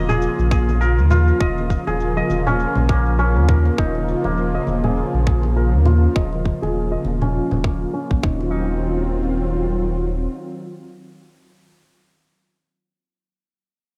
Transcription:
Already playing: D#1 C#3 F3 A#3 C4 D#4 F4 F#4 D#5
0.09 G#4, low conga, shaker
0.22 shaker
0.39 A#1, shaker
0.51 G#4, kick, shaker
0.69 high conga, shaker
0.81 A#4, shaker
0.98 D#2, shaker
1.10 F4, muted conga, low conga, shaker
1.28 shaker
1.40 D#1 D#5, kick, shaker
1.58 high conga, shaker
1.70 kick, high conga, shaker
1.87 D#1 G#4, high conga, shaker
2.00 shaker
2.17 D#5, shaker
2.30 D#1, high conga, shaker
2.47 C#4, muted conga, low conga, shaker
2.59 shaker
2.75 A#1, low conga, shaker
2.89 A#3, kick, shaker
3.06 shaker
3.19 C#4, shaker
3.36 D#2, shaker
3.48 A#4, kick, low conga, shaker
3.65 muted conga, shaker
3.78 D#1 D#4, kick
3.95 high conga, shaker
4.08 shaker
4.24 D#1 A#3, high conga, shaker
4.38 shaker
4.55 D#5, shaker
4.67 D#1, high conga, shaker
4.84 G#4, low conga, shaker
4.97 shaker
5.14 A#1, shaker
5.27 G#4, kick, shaker
5.43 high conga, shaker
5.56 A#4, shaker
5.73 D#2, shaker
5.85 F4, muted conga, low conga, shaker
6.03 shaker
6.16 D#1 D#5, kick
6.33 high conga, shaker
6.45 kick, high conga, shaker
6.62 D#1 G#4, high conga, shaker
6.75 shaker
6.92 D#5, shaker
7.05 D#1, high conga, shaker
7.21 C#4, muted conga, low conga, shaker
7.35 shaker
7.51 D#1, low conga
7.64 A#3, kick
7.81 shaker
7.94 C#4, shaker
8.11 A#1, kick
8.23 D#1 D#3 F#3 C4 D#4 F4, kick, low conga
8.41 muted conga

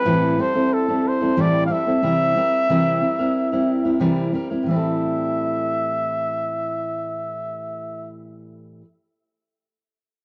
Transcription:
Already playing: B4
0.05 A2 E3 G3 C4 E4 A4
0.38 G3 C4 E4 A4 C5
0.55 G3 C4 E4 A4
0.74 A4
0.88 G3 C4 E4 A4
1.08 C5
1.21 G3 C4 E4 A4
1.37 A2 E3 G3 C4 E4 A4
1.41 D5
1.66 G3 C4 F5
1.71 E4 A4 E5
1.86 G3 C4 E4 A4
2.02 C3 E3 G3 C4 E4 A#4
2.36 G3 C4 E4 A#4
2.69 C3 E3 G3 C4 E4 A#4
3.02 G3 C4 E4 A#4
3.19 G3 C4 E4 A#4
3.52 G3 C4 E4 A#4
3.85 G3 C4 E4 A#4
4.00 C3 E3 G3 C4 E4 A#4
4.33 G3 C4 E4 A#4
4.50 G3 C4 E4 A#4
4.63 A2 E3
4.69 G3 C4 E5
4.74 E4 A4

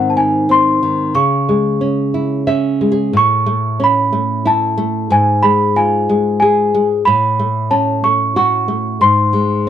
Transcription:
Already playing: G#2 D#3 C4
0.10 A5
0.17 D#4 G#5
0.49 C4 C6
0.83 D#3
1.14 C#3 C#6
1.49 G#3
1.81 C#4
2.14 E4
2.47 C#4 E5
2.81 G#3
2.92 G#4
3.13 A2 C#6
3.46 A3
3.80 C#4
3.84 B5
4.13 A3
4.45 E4 A5
4.78 A3
5.10 G#2 G#5
5.43 G#3 B5
5.76 F4 G#5
6.09 G#3
6.40 G#4 G#5
6.74 G#3
7.05 A2 B5
7.39 A3
7.71 C#4 A5
8.04 A3 C#6
8.36 F#4 C#6
8.68 A3
9.01 G#2 C6
9.33 G#3

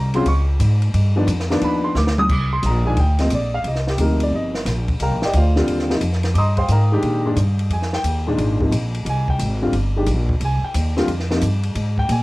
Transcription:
Already playing: C2 A#5
0.14 C#3 F#3 C4 F4 C6, ride
0.25 C#2 C#6, ride
0.60 G#2, hi-hat pedal, ride
0.82 ride
0.94 G2, ride
1.16 D#3 F3 B3 D4
1.27 F2, hi-hat pedal, ride
1.40 snare
1.50 D#3 F3 B3 D4, snare
1.61 D#2 B5, ride
1.84 C6
1.95 D2 D6, snare, hi-hat pedal
2.07 snare
2.18 D#6, mid tom
2.29 C2 D6, kick, crash
2.53 C6
2.63 A#1 A#5, hi-hat pedal, ride
2.85 A#2 D#3 G#3 D4 G#5
2.96 D2 G5, ride
3.19 C3 F3 A#3 C4 D#5, snare, ride
3.30 A#1, hi-hat pedal, ride
3.35 D5
3.54 F5
3.64 C2 D#5, ride
3.76 snare
3.87 G4, snare
3.98 D2 C3 F3 A#3 D#4 A#4, hi-hat pedal, ride
4.20 D5, ride
4.31 G1
4.35 D#5
4.55 snare
4.65 A#1, snare, hi-hat pedal, ride
4.88 kick, ride
5.00 C2 A#4 F5 G5 A#5, ride
5.11 A#1
5.22 G1 G4 D5 D#5 G5, snare
5.33 D2 F4 F5, hi-hat pedal, ride
5.37 C5 D5
5.56 D3 G3 C4 F4, snare
5.67 D#2, ride
5.79 snare
5.90 C3 F3 A#3 D#4, snare
6.01 F2, hi-hat pedal, ride
6.13 snare
6.23 snare, ride
6.34 G2 D#5 D6, ride
6.38 A#5 C6 D#6
6.57 C5 F5 G5 C6, kick, ride
6.68 G#2 A#4 F5 G5 A#5, hi-hat pedal, ride
6.92 D#3 G#3 D4 G4
7.02 A#2, ride
7.25 A#2 D#3 G#3 D4
7.36 G2, hi-hat pedal, ride
7.59 ride
7.70 F2 G#5, ride
7.82 snare
7.93 G5, snare
8.03 D#2, hi-hat pedal, ride
8.27 A#2 D#3 G#3 D4
8.38 G#1, ride
8.61 C3 F3 A#3 D#4, kick
8.72 A#1, hi-hat pedal, ride
8.95 ride
9.05 C2, ride
9.10 G#5
9.28 G5, kick
9.39 G#1, hi-hat pedal, ride
9.62 D3 G3 C4 F4
9.72 G1, ride
9.96 D#3 G#3 D4 G4
10.06 A#1, hi-hat pedal, ride
10.29 kick
10.40 C2, ride
10.45 G#5
10.63 G5, muted upright bass stroke
10.74 D#2, hi-hat pedal, ride
10.97 D3 G3 C4 F4, snare
11.08 F2, ride
11.20 snare
11.31 C3 F3 A#3 D#4, snare
11.41 G2, hi-hat pedal, ride
11.63 ride
11.75 G#2, ride
11.98 G5, kick
12.09 A#2 G#5, hi-hat pedal, ride

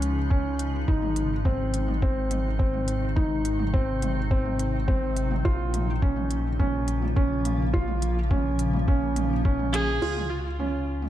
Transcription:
Already playing: C#2 C#3 F3 G#3 C#4 D#4
0.02 closed hi-hat
0.30 C#4, kick
0.59 closed hi-hat
0.88 G#1 C3 D#3 D#4, kick
1.02 mid tom
1.16 closed hi-hat
1.45 C4, kick, mid tom
1.74 closed hi-hat
1.88 mid tom
2.02 C4, kick
2.31 closed hi-hat, mid tom
2.59 C4, kick
2.74 mid tom
2.88 closed hi-hat
3.16 F#3 D#4, kick, mid tom
3.45 closed hi-hat
3.59 mid tom
3.74 C4, kick
4.02 closed hi-hat, mid tom
4.31 C4, kick
4.45 mid tom
4.59 closed hi-hat
4.88 C4, kick, mid tom
5.17 closed hi-hat
5.31 mid tom
5.45 A#1 C#3 F3 A#3 F4, kick
5.74 closed hi-hat, mid tom
6.02 C#4, kick
6.16 mid tom
6.31 closed hi-hat
6.59 C#4, kick, mid tom
6.88 closed hi-hat
7.02 mid tom
7.16 C#4, kick
7.45 closed hi-hat, mid tom
7.73 D#4 F4, kick
7.88 mid tom
8.02 closed hi-hat
8.31 C#4, kick, mid tom
8.59 closed hi-hat
8.73 mid tom
8.88 C#4, kick
9.16 closed hi-hat, mid tom
9.45 C#4, kick
9.59 mid tom
9.73 G#4, closed hi-hat
10.01 C#2 C#3 F3 G#3 F4, crash
10.17 mid tom
10.29 F4
10.38 F#4
10.44 F4
10.59 C#4, mid tom
11.02 mid tom

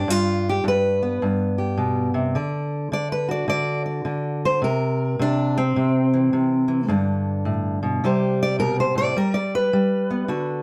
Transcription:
Already playing: D4
0.08 G2 F4
0.49 G4
0.64 G2
0.68 B4
1.03 B3
1.22 G2
1.58 G4
1.77 B2
2.14 C3
2.35 D3 D5
2.92 D3 D5
3.12 B4
3.28 F#4 D5
3.48 D3 D5
3.86 D5
4.05 D3
4.45 C5
4.62 C3 A#4
5.19 C3 D4
5.58 C4
5.76 C3
6.14 E3
6.33 C3
6.68 E3
6.88 G2 D3
7.45 A2
7.83 B2
8.04 C3 G3 G4 C5
8.43 D5
8.59 B2 A#4
8.80 C5
8.95 A2 D5
9.16 G3 A#4
9.34 D5
9.55 B4
9.73 G3
10.11 B3
10.28 D3 F#4

